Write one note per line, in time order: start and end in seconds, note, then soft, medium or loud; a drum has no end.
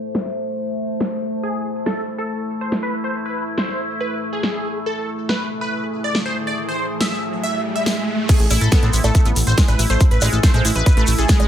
0.00 8.28 A3 medium
0.00 11.48 A3 medium
0.00 11.48 E4 medium
0.00 1.46 C5 medium
0.00 11.48 E5 medium
0.15 snare loud
0.26 snare soft
1.01 snare loud
1.43 4.88 E4 medium
1.43 1.67 G#4 loud
1.86 2.04 A4 loud
1.86 snare loud
2.18 2.42 A4 medium
2.61 2.73 C5 medium
2.72 snare loud
2.83 2.95 B4 medium
3.04 3.16 C5 medium
3.26 3.43 B4 medium
3.58 3.81 C5 loud
3.58 snare loud
3.68 snare soft
4.01 4.18 B4 loud
4.33 4.78 G#4 loud
4.43 snare loud
4.86 8.31 G#4 medium
4.86 5.10 A4 loud
4.86 riser medium
5.29 5.47 B4 loud
5.29 snare loud
5.61 5.85 B4 medium
6.04 6.16 D5 medium
6.15 snare loud
6.26 6.37 C5 medium
6.47 6.59 D5 medium
6.69 6.86 C5 medium
7.01 7.24 E5 loud
7.01 snare loud
7.11 snare soft
7.43 7.61 E5 loud
7.76 8.21 E5 loud
7.86 snare loud
8.29 8.35 A3 medium
8.29 11.48 A3 medium
8.29 11.48 E4 medium
8.29 8.53 G#4 loud
8.29 kick loud
8.29 closed hi-hat loud
8.29 crash loud
8.29 shekere medium
8.40 8.47 A1 medium
8.40 closed hi-hat medium
8.40 shekere soft
8.51 8.58 A1 loud
8.51 8.54 E4 loud
8.51 open hi-hat loud
8.51 high bongo soft
8.51 shekere medium
8.61 8.68 A1 medium
8.61 8.67 A4 loud
8.61 closed hi-hat medium
8.61 shekere soft
8.72 8.77 B3 loud
8.72 8.90 A4 loud
8.72 kick loud
8.72 snare loud
8.72 closed hi-hat loud
8.72 shekere soft
8.83 8.90 A2 medium
8.83 8.88 C4 medium
8.83 closed hi-hat medium
8.83 shekere soft
8.93 9.00 A1 loud
8.93 8.99 E4 medium
8.93 open hi-hat medium
8.93 shekere loud
9.04 9.11 A1 medium
9.04 9.10 A3 medium
9.04 9.28 A4 medium
9.04 closed hi-hat medium
9.04 high bongo medium
9.04 shekere soft
9.15 9.20 A3 medium
9.15 kick loud
9.15 closed hi-hat medium
9.15 shekere medium
9.26 9.33 A1 medium
9.26 9.31 B3 medium
9.26 closed hi-hat medium
9.26 shekere soft
9.36 9.43 A1 loud
9.36 open hi-hat loud
9.36 shekere medium
9.47 9.54 A1 loud
9.47 9.54 C4 medium
9.47 9.59 C5 loud
9.47 closed hi-hat medium
9.47 shekere soft
9.58 9.61 G#3 medium
9.58 9.65 C4 medium
9.58 kick loud
9.58 snare loud
9.58 closed hi-hat loud
9.58 shekere medium
9.68 9.75 A1 medium
9.68 9.80 B4 medium
9.68 closed hi-hat medium
9.68 high bongo soft
9.68 shekere soft
9.79 9.86 A1 medium
9.79 9.85 E4 medium
9.79 open hi-hat medium
9.79 shekere medium
9.90 9.97 A1 loud
9.90 9.95 A3 medium
9.90 10.02 C5 medium
9.90 closed hi-hat medium
9.90 shekere soft
10.00 kick loud
10.00 closed hi-hat medium
10.00 shekere medium
10.11 10.18 A1 medium
10.11 10.29 B4 medium
10.11 closed hi-hat medium
10.11 shekere soft
10.21 10.29 A1 loud
10.21 10.27 G#3 loud
10.21 open hi-hat loud
10.21 high bongo medium
10.21 shekere medium
10.33 10.40 A1 medium
10.33 10.41 A4 medium
10.33 closed hi-hat medium
10.33 shekere soft
10.43 10.47 A3 medium
10.43 10.67 C5 medium
10.43 kick loud
10.43 snare loud
10.43 closed hi-hat loud
10.43 shekere medium
10.54 10.61 A2 medium
10.54 10.62 G#3 loud
10.54 snare soft
10.54 closed hi-hat medium
10.54 shekere soft
10.65 10.72 A1 loud
10.65 10.70 E4 medium
10.65 11.25 E4 loud
10.65 open hi-hat loud
10.65 shekere loud
10.75 10.83 A1 medium
10.75 10.84 B4 loud
10.75 closed hi-hat medium
10.75 shekere soft
10.86 11.04 B4 loud
10.86 kick loud
10.86 closed hi-hat medium
10.86 high bongo soft
10.86 shekere medium
10.97 11.04 A1 medium
10.97 11.00 A3 loud
10.97 closed hi-hat medium
10.97 shekere soft
11.07 11.15 A1 loud
11.07 11.13 E4 medium
11.07 open hi-hat loud
11.07 shekere loud
11.18 11.25 A1 medium
11.18 11.48 G#4 loud
11.18 11.26 A4 medium
11.18 closed hi-hat medium
11.18 shekere soft
11.29 11.32 G#3 loud
11.29 kick loud
11.29 snare loud
11.29 closed hi-hat loud
11.29 shekere medium
11.40 11.47 A1 medium
11.40 11.48 G#3 loud
11.40 closed hi-hat medium
11.40 high bongo medium
11.40 shekere soft